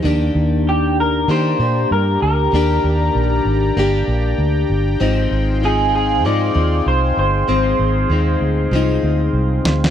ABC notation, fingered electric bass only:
X:1
M:4/4
L:1/8
Q:"Swing 16ths" 1/4=97
K:Eb
V:1 name="Fingered electric bass" clef=bass
E,, E,,3 E, B,, G,, D,, | E,, E,, B,,, A,,, G,,, B,,, D,, G,,, | A,,, A,,,3 A,, E,, C,, G,,, | A,,, A,,, E,, D,, C,, D,, C,, D,, |]